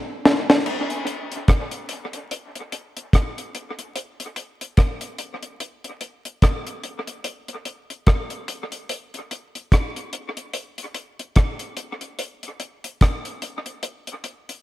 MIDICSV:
0, 0, Header, 1, 2, 480
1, 0, Start_track
1, 0, Tempo, 823045
1, 384, Time_signature, 4, 2, 24, 8
1, 8527, End_track
2, 0, Start_track
2, 0, Title_t, "Drums"
2, 148, Note_on_c, 9, 38, 106
2, 207, Note_off_c, 9, 38, 0
2, 289, Note_on_c, 9, 38, 96
2, 348, Note_off_c, 9, 38, 0
2, 384, Note_on_c, 9, 49, 84
2, 442, Note_off_c, 9, 49, 0
2, 525, Note_on_c, 9, 42, 57
2, 583, Note_off_c, 9, 42, 0
2, 623, Note_on_c, 9, 42, 75
2, 681, Note_off_c, 9, 42, 0
2, 768, Note_on_c, 9, 42, 55
2, 826, Note_off_c, 9, 42, 0
2, 864, Note_on_c, 9, 42, 83
2, 866, Note_on_c, 9, 36, 112
2, 872, Note_on_c, 9, 37, 104
2, 922, Note_off_c, 9, 42, 0
2, 924, Note_off_c, 9, 36, 0
2, 930, Note_off_c, 9, 37, 0
2, 1000, Note_on_c, 9, 42, 54
2, 1058, Note_off_c, 9, 42, 0
2, 1101, Note_on_c, 9, 42, 86
2, 1159, Note_off_c, 9, 42, 0
2, 1244, Note_on_c, 9, 42, 52
2, 1302, Note_off_c, 9, 42, 0
2, 1348, Note_on_c, 9, 42, 91
2, 1406, Note_off_c, 9, 42, 0
2, 1490, Note_on_c, 9, 42, 48
2, 1548, Note_off_c, 9, 42, 0
2, 1588, Note_on_c, 9, 42, 82
2, 1646, Note_off_c, 9, 42, 0
2, 1730, Note_on_c, 9, 42, 62
2, 1788, Note_off_c, 9, 42, 0
2, 1828, Note_on_c, 9, 36, 103
2, 1829, Note_on_c, 9, 42, 103
2, 1837, Note_on_c, 9, 37, 101
2, 1886, Note_off_c, 9, 36, 0
2, 1887, Note_off_c, 9, 42, 0
2, 1896, Note_off_c, 9, 37, 0
2, 1972, Note_on_c, 9, 42, 48
2, 2030, Note_off_c, 9, 42, 0
2, 2069, Note_on_c, 9, 42, 77
2, 2127, Note_off_c, 9, 42, 0
2, 2208, Note_on_c, 9, 42, 52
2, 2266, Note_off_c, 9, 42, 0
2, 2307, Note_on_c, 9, 42, 92
2, 2365, Note_off_c, 9, 42, 0
2, 2449, Note_on_c, 9, 42, 64
2, 2507, Note_off_c, 9, 42, 0
2, 2544, Note_on_c, 9, 42, 76
2, 2602, Note_off_c, 9, 42, 0
2, 2690, Note_on_c, 9, 42, 55
2, 2748, Note_off_c, 9, 42, 0
2, 2783, Note_on_c, 9, 42, 79
2, 2786, Note_on_c, 9, 36, 121
2, 2791, Note_on_c, 9, 37, 96
2, 2842, Note_off_c, 9, 42, 0
2, 2845, Note_off_c, 9, 36, 0
2, 2850, Note_off_c, 9, 37, 0
2, 2922, Note_on_c, 9, 42, 60
2, 2980, Note_off_c, 9, 42, 0
2, 3024, Note_on_c, 9, 42, 89
2, 3082, Note_off_c, 9, 42, 0
2, 3164, Note_on_c, 9, 42, 52
2, 3222, Note_off_c, 9, 42, 0
2, 3267, Note_on_c, 9, 42, 89
2, 3326, Note_off_c, 9, 42, 0
2, 3408, Note_on_c, 9, 42, 50
2, 3466, Note_off_c, 9, 42, 0
2, 3503, Note_on_c, 9, 42, 78
2, 3562, Note_off_c, 9, 42, 0
2, 3646, Note_on_c, 9, 42, 61
2, 3705, Note_off_c, 9, 42, 0
2, 3745, Note_on_c, 9, 42, 105
2, 3747, Note_on_c, 9, 36, 101
2, 3754, Note_on_c, 9, 37, 116
2, 3803, Note_off_c, 9, 42, 0
2, 3805, Note_off_c, 9, 36, 0
2, 3812, Note_off_c, 9, 37, 0
2, 3888, Note_on_c, 9, 42, 46
2, 3946, Note_off_c, 9, 42, 0
2, 3987, Note_on_c, 9, 42, 74
2, 4045, Note_off_c, 9, 42, 0
2, 4126, Note_on_c, 9, 42, 58
2, 4184, Note_off_c, 9, 42, 0
2, 4224, Note_on_c, 9, 42, 93
2, 4282, Note_off_c, 9, 42, 0
2, 4364, Note_on_c, 9, 42, 55
2, 4422, Note_off_c, 9, 42, 0
2, 4463, Note_on_c, 9, 42, 75
2, 4521, Note_off_c, 9, 42, 0
2, 4608, Note_on_c, 9, 42, 54
2, 4666, Note_off_c, 9, 42, 0
2, 4704, Note_on_c, 9, 42, 73
2, 4707, Note_on_c, 9, 36, 112
2, 4712, Note_on_c, 9, 37, 109
2, 4762, Note_off_c, 9, 42, 0
2, 4765, Note_off_c, 9, 36, 0
2, 4770, Note_off_c, 9, 37, 0
2, 4842, Note_on_c, 9, 42, 50
2, 4900, Note_off_c, 9, 42, 0
2, 4947, Note_on_c, 9, 42, 84
2, 5005, Note_off_c, 9, 42, 0
2, 5085, Note_on_c, 9, 42, 59
2, 5144, Note_off_c, 9, 42, 0
2, 5187, Note_on_c, 9, 42, 94
2, 5245, Note_off_c, 9, 42, 0
2, 5331, Note_on_c, 9, 42, 47
2, 5389, Note_off_c, 9, 42, 0
2, 5430, Note_on_c, 9, 42, 77
2, 5488, Note_off_c, 9, 42, 0
2, 5571, Note_on_c, 9, 42, 57
2, 5629, Note_off_c, 9, 42, 0
2, 5668, Note_on_c, 9, 36, 103
2, 5669, Note_on_c, 9, 42, 100
2, 5677, Note_on_c, 9, 37, 113
2, 5726, Note_off_c, 9, 36, 0
2, 5727, Note_off_c, 9, 42, 0
2, 5736, Note_off_c, 9, 37, 0
2, 5811, Note_on_c, 9, 42, 51
2, 5869, Note_off_c, 9, 42, 0
2, 5907, Note_on_c, 9, 42, 88
2, 5965, Note_off_c, 9, 42, 0
2, 6048, Note_on_c, 9, 42, 60
2, 6106, Note_off_c, 9, 42, 0
2, 6144, Note_on_c, 9, 42, 93
2, 6203, Note_off_c, 9, 42, 0
2, 6287, Note_on_c, 9, 42, 59
2, 6345, Note_off_c, 9, 42, 0
2, 6383, Note_on_c, 9, 42, 79
2, 6441, Note_off_c, 9, 42, 0
2, 6528, Note_on_c, 9, 42, 55
2, 6586, Note_off_c, 9, 42, 0
2, 6623, Note_on_c, 9, 42, 76
2, 6627, Note_on_c, 9, 36, 113
2, 6631, Note_on_c, 9, 37, 104
2, 6681, Note_off_c, 9, 42, 0
2, 6685, Note_off_c, 9, 36, 0
2, 6689, Note_off_c, 9, 37, 0
2, 6761, Note_on_c, 9, 42, 58
2, 6819, Note_off_c, 9, 42, 0
2, 6862, Note_on_c, 9, 42, 83
2, 6921, Note_off_c, 9, 42, 0
2, 7005, Note_on_c, 9, 42, 54
2, 7063, Note_off_c, 9, 42, 0
2, 7108, Note_on_c, 9, 42, 99
2, 7166, Note_off_c, 9, 42, 0
2, 7249, Note_on_c, 9, 42, 43
2, 7308, Note_off_c, 9, 42, 0
2, 7346, Note_on_c, 9, 42, 79
2, 7405, Note_off_c, 9, 42, 0
2, 7489, Note_on_c, 9, 42, 63
2, 7547, Note_off_c, 9, 42, 0
2, 7587, Note_on_c, 9, 42, 101
2, 7588, Note_on_c, 9, 36, 98
2, 7595, Note_on_c, 9, 37, 119
2, 7645, Note_off_c, 9, 42, 0
2, 7647, Note_off_c, 9, 36, 0
2, 7654, Note_off_c, 9, 37, 0
2, 7728, Note_on_c, 9, 42, 47
2, 7786, Note_off_c, 9, 42, 0
2, 7826, Note_on_c, 9, 42, 83
2, 7885, Note_off_c, 9, 42, 0
2, 7966, Note_on_c, 9, 42, 57
2, 8024, Note_off_c, 9, 42, 0
2, 8065, Note_on_c, 9, 42, 95
2, 8123, Note_off_c, 9, 42, 0
2, 8207, Note_on_c, 9, 42, 59
2, 8266, Note_off_c, 9, 42, 0
2, 8304, Note_on_c, 9, 42, 72
2, 8363, Note_off_c, 9, 42, 0
2, 8451, Note_on_c, 9, 42, 60
2, 8509, Note_off_c, 9, 42, 0
2, 8527, End_track
0, 0, End_of_file